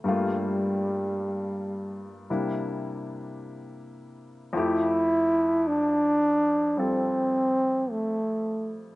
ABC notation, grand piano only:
X:1
M:4/4
L:1/8
Q:"Swing" 1/4=53
K:F
V:1 name="Grand piano"
[G,,G,A,B,F]4 [C,G,B,DE]4 | [F,,F,A,EG]4 [G,CFA]4 |]